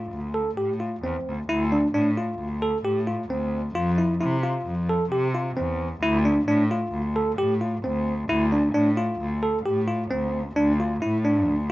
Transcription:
Already playing: F4
0.12 D2
0.34 A4
0.57 A2 G4
0.80 F4
1.03 E2 C4
1.25 D2
1.48 D2 E4
1.72 D4
1.94 A2 D4
2.17 F4
2.39 D2
2.62 A4
2.85 A2 G4
3.07 F4
3.30 D2 C4
3.75 F2 F4
3.98 E4
4.21 C3 E4
4.44 F4
4.66 F2
4.89 A4
5.11 C3 G4
5.34 F4
5.57 E2 C4
6.01 D2 E4
6.25 D4
6.47 A2 D4
6.71 F4
6.93 D2
7.16 A4
7.38 A2 G4
7.61 F4
7.84 D2 C4
8.29 D2 E4
8.52 D4
8.74 A2 D4
8.97 F4
9.20 D2
9.43 A4
9.65 A2 G4
9.87 F4
10.11 D2 C4
10.56 D2 D4
10.80 F4
11.02 A2 E4
11.25 D4
11.48 D2

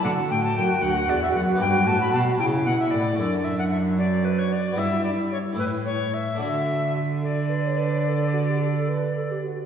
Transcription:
0.00 A3 D4 D5 F#5
0.04 D3 F#4
0.30 A2 G5
0.43 A5
0.55 F#2 G5
0.81 D2 F#5
1.07 E2 D5
1.23 E5
1.33 F#2 F#5
1.55 B3 D4 D5
1.59 G2 G5
1.86 A2 A5
2.01 B5
2.13 B2 A5
2.39 C#3 E4 G5
2.65 B2 F#5
2.80 E5
2.91 A2 D5
3.14 A3 F#4 A4
3.18 F#2 D4 D5
3.44 E5
3.58 F#5
3.71 E5
3.98 F#4 D5
4.25 B4
4.39 C#5
4.52 D5
4.72 G2 B3 E4 G4
4.77 G2 E5
4.93 E4 F#4
5.04 D5
5.10 D4 E4
5.32 C#5
5.53 A2 A3 E4 G4
5.57 A2 B4
5.85 C#5
6.14 E5
6.35 D3 A3 D4 F#4
6.39 D3 F#4 E5
7.21 A4 D5
7.49 B4
7.65 C#5
7.78 B4
8.06 A4 B4
8.34 F#4
8.49 G4
8.61 A4
8.89 B4
9.16 A4
9.31 G4
9.43 F#4

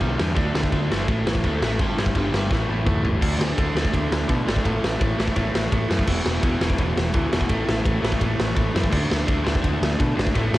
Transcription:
0.00 B1 G2 D3 G3, kick, crash
0.18 E2 G2 D3 G3, snare
0.35 D2 D3 A3 D4, kick, crash
0.55 D2 D3 A3 D4, snare
0.63 kick
0.72 D2 D3 A3 D4, kick, crash
0.91 G1 D3 A3 D4, snare
1.08 A1 A2 E3 A3, kick, crash
1.26 A1 A2 E3 A3, snare
1.35 kick
1.44 D2 A2 E3 A3, kick, crash
1.62 A1 A2 E3 A3, snare
1.79 G1 G2 D3 G3, kick, crash
1.98 G1 G2 D3 G3, snare
2.06 kick
2.15 G1 G2 D3 G3, kick, crash
2.33 G1 G2 D3 G3, snare
2.51 A1 A2 E3 A3, kick, snare
2.68 A1 A2 E3 A3
2.85 D2 A2 E3 A3, kick, mid tom
3.03 G1 A2 E3 A3, floor tom
3.22 D2 D3 A3 D4, kick, crash
3.39 D2, snare
3.58 D2 D3 A3 D4, kick, ride
3.75 D2 D3 A3 D4, snare
3.85 kick
3.94 D2 D3 A3 D4, kick, ride
4.12 D2, snare
4.28 B2 D3 A3 D4, kick, ride
4.46 G#1 D3 A3 D4, snare
4.56 kick
4.64 A1 A2 E3 A3, kick, ride
4.84 A1, snare
5.01 A1 A2 E3 A3, kick, ride
5.17 A1 A2 E3 A3, snare
5.28 kick
5.35 A1 A2 E3 A3, kick, ride
5.55 A1, snare
5.72 A1 A2 E3 A3, kick, ride
5.89 F#2 A2 E3 A3, snare
5.99 kick
6.07 E1 E2 B2 E3, kick, crash
6.26 E1, snare
6.42 E1 E2 B2 E3, kick, ride
6.60 E1 E2 B2 E3, snare
6.70 kick
6.78 E1 E2 B2 E3, kick, ride
6.97 E1, snare
7.14 D2 E2 B2 E3, kick, ride
7.32 E1 E2 B2 E3, snare
7.41 kick
7.49 A1 A2 E3 A3, kick, ride
7.69 A1, snare
7.84 A1 A2 E3 A3, kick, ride
8.01 A1 A2 E3 A3, snare
8.12 kick
8.19 A1 A2 E3 A3, kick, ride
8.40 A1, snare
8.55 A1 A2 E3 A3, kick, ride
8.73 F#2 A2 E3 A3, snare
8.84 kick
8.90 D2 D3 A3 D4, kick, crash
9.11 D2, snare
9.26 D2 D3 A3 D4, kick, ride
9.44 D2 D3 A3 D4, snare
9.55 kick
9.62 D2 D3 A3 D4, kick, ride
9.82 D2, snare
9.99 B2 D3 A3 D4, kick, ride
10.15 G#1 D3 A3 D4, snare
10.27 kick
10.34 A1 A2 E3 A3, kick, ride
10.53 A1, snare

